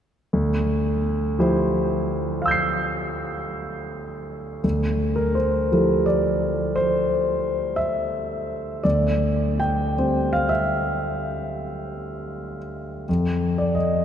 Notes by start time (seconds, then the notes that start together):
0.33 D2
1.39 F3 E4 G4 C5
2.42 F5 E6
2.48 G6 C7
4.64 D2
5.16 A#4
5.35 C5
5.72 F3 E4 G4 A4
6.06 D5
6.76 C5
7.76 E5
8.84 D2 D5
9.60 G5
9.97 G3 C4 G4 C5
10.33 F5
10.49 E5
13.09 F2
13.58 D5
13.75 D#5